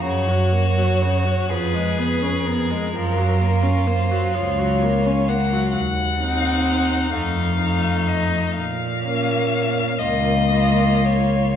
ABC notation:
X:1
M:6/8
L:1/16
Q:3/8=42
K:Bbm
V:1 name="Violin"
d6 _c4 B2- | B4 c2 d4 g2 | g6 f4 e2 | f6 e4 d2 |]
V:2 name="Violin"
G6 A6 | F12 | z2 E4 E2 E4 | z2 D4 F2 F4 |]
V:3 name="Viola"
D, G, B, G, D, G, F, A, _C D C A, | F, G, B, D B, G, F, G, B, D B, G, | z2 C4 =A,2 A,4 | z2 B,4 B,2 B,4 |]
V:4 name="Cello" clef=bass
G,,6 F,,6 | G,,6 D,,6 | E,,6 F,,6 | B,,6 D,,6 |]